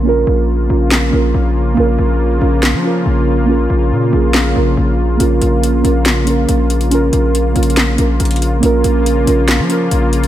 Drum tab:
HH |------------------------------------------------------------------------------------------------|------------------------------------------------------------------------------------------------|------------------------------------------------------------------------------------------------|x-----------x-----------x-----------x-----------x-----------x-----------x-----------x-----x-----|
CP |------------------------------------------------x-----------------------------------------------|------------------------------------------------x-----------------------------------------------|------------------------------------------------x-----------------------------------------------|------------------------------------------------x-----------------------------------------------|
SD |------------------------------------------------o-----------------------------------------------|------------------------------------------------o-----------------------------------------------|------------------------------------------------o-----------------------------------------------|------------------------------------------------o-----------------------------------------------|

HH |x-----------x-----------x-----------x---x---x---x-----------x-----------x--x--x--x--x-----------|x-----------x-----------x-----------x-----------x-----------x-----------x-----------x-----x-----|
CP |------------------------------------------------x-----------------------------------------------|------------------------------------------------x-----------------------------------------------|
SD |------------------------------------------------o-----------------------------------------------|------------------------------------------------o-----------------------------------------------|